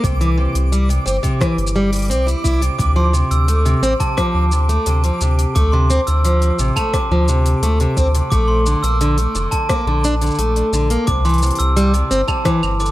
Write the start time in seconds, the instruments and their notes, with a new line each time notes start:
Already playing: synth texture D6
0.04 sub bass C2, steel-string acoustic guitar C3, kick, open hi-hat, shaker
0.21 steel-string acoustic guitar E3, open hi-hat
0.38 steel-string acoustic guitar C3
0.55 sub bass C2, open hi-hat, shaker
0.72 steel-string acoustic guitar G3, open hi-hat, shaker
0.89 steel-string acoustic guitar C3, open hi-hat, shaker
1.06 sub bass G1, steel-string acoustic guitar C4, shaker
1.23 steel-string acoustic guitar C3, kick, open hi-hat, shaker
1.41 steel-string acoustic guitar E3, kick, cross-stick, open hi-hat, shaker
1.58 sub bass G1, open hi-hat
1.67 shaker
1.76 steel-string acoustic guitar G3
1.92 steel-string acoustic guitar G3, open hi-hat, shaker
1.96 open hi-hat
1.99 open hi-hat
2.02 open hi-hat
2.05 open hi-hat
2.08 sub bass C2, steel-string acoustic guitar C4, open hi-hat
2.11 open hi-hat, shaker
2.27 steel-string acoustic guitar E4, open hi-hat, shaker
2.44 sub bass C2, steel-string acoustic guitar E4, kick, shaker
2.61 steel-string acoustic guitar C3, open hi-hat, shaker
2.79 sub bass D2, steel-string acoustic guitar C3, glockenspiel D6, kick, open hi-hat, shaker
2.96 steel-string acoustic guitar F3, glockenspiel C6
3.13 steel-string acoustic guitar C3, shaker
3.31 sub bass D2, glockenspiel E6, open hi-hat, shaker
3.48 steel-string acoustic guitar A3, open hi-hat, shaker
3.65 steel-string acoustic guitar C3, open hi-hat, shaker
3.82 sub bass A1, steel-string acoustic guitar C4, shaker
4.00 steel-string acoustic guitar C3, glockenspiel A5, kick, open hi-hat, shaker
4.17 steel-string acoustic guitar F3, glockenspiel D6, kick, cross-stick, open hi-hat, shaker
4.34 sub bass D2
4.52 steel-string acoustic guitar C3, shaker
4.69 steel-string acoustic guitar A3, open hi-hat, shaker
4.86 sub bass D2, steel-string acoustic guitar C3, open hi-hat, shaker
5.04 steel-string acoustic guitar F3, open hi-hat, shaker
5.21 sub bass D2, steel-string acoustic guitar C3, shaker
5.39 open hi-hat, shaker
5.55 sub bass D2, steel-string acoustic guitar A3, glockenspiel D6, kick, open hi-hat, shaker
5.72 steel-string acoustic guitar C3, glockenspiel C6
5.90 steel-string acoustic guitar C4, shaker
6.07 sub bass D2, steel-string acoustic guitar C3, glockenspiel E6, open hi-hat, shaker
6.25 steel-string acoustic guitar F3, open hi-hat, shaker
6.42 open hi-hat, shaker
6.59 sub bass A1, steel-string acoustic guitar C3, shaker
6.76 steel-string acoustic guitar A3, glockenspiel A5, kick, open hi-hat, claves, shaker
6.93 steel-string acoustic guitar C3, glockenspiel D6, kick, cross-stick, open hi-hat, shaker
7.11 sub bass D2, steel-string acoustic guitar F3
7.28 steel-string acoustic guitar C3, shaker
7.46 open hi-hat, shaker
7.62 sub bass D2, steel-string acoustic guitar A3, open hi-hat, shaker
7.80 steel-string acoustic guitar C3, open hi-hat, shaker
7.97 sub bass D2, steel-string acoustic guitar C4, kick, shaker
8.15 steel-string acoustic guitar C3, open hi-hat, shaker
8.30 sub bass A#1, steel-string acoustic guitar A3, glockenspiel D6, kick, open hi-hat, shaker
8.48 glockenspiel C6
8.66 steel-string acoustic guitar D3, shaker
8.83 sub bass A#1, steel-string acoustic guitar A#3, glockenspiel E6, open hi-hat, shaker
9.01 steel-string acoustic guitar D3, open hi-hat, shaker
9.18 steel-string acoustic guitar A3, open hi-hat, shaker
9.35 sub bass F1, steel-string acoustic guitar D3, shaker
9.51 glockenspiel A5, kick, open hi-hat, shaker
9.69 steel-string acoustic guitar A#3, glockenspiel D6, kick, cross-stick, open hi-hat, shaker
9.86 sub bass A#1, steel-string acoustic guitar D3
10.04 steel-string acoustic guitar D4, shaker
10.22 steel-string acoustic guitar D3, open hi-hat, shaker
10.26 shaker
10.31 shaker
10.35 sub bass A#1, open hi-hat, shaker
10.39 steel-string acoustic guitar A3, shaker
10.56 open hi-hat, shaker
10.72 sub bass A#1, steel-string acoustic guitar D3, shaker
10.90 steel-string acoustic guitar A#3, open hi-hat, shaker
11.07 sub bass C2, steel-string acoustic guitar C3, glockenspiel D6, kick, open hi-hat, shaker
11.25 steel-string acoustic guitar E3, glockenspiel C6, open hi-hat, shaker
11.29 open hi-hat
11.34 open hi-hat
11.38 open hi-hat
11.42 steel-string acoustic guitar C3, open hi-hat, shaker
11.46 open hi-hat
11.51 open hi-hat
11.55 glockenspiel E6, open hi-hat
11.60 sub bass C2, open hi-hat, shaker
11.77 steel-string acoustic guitar G3, open hi-hat, shaker
11.94 steel-string acoustic guitar C3, open hi-hat, shaker
12.11 sub bass G1, steel-string acoustic guitar C4, shaker
12.28 steel-string acoustic guitar C3, glockenspiel A5, kick, claves, shaker
12.45 steel-string acoustic guitar E3, glockenspiel D6, kick, cross-stick, open hi-hat, shaker
12.63 sub bass G1, claves, shaker
12.80 steel-string acoustic guitar D3, glockenspiel D6, shaker
12.86 shaker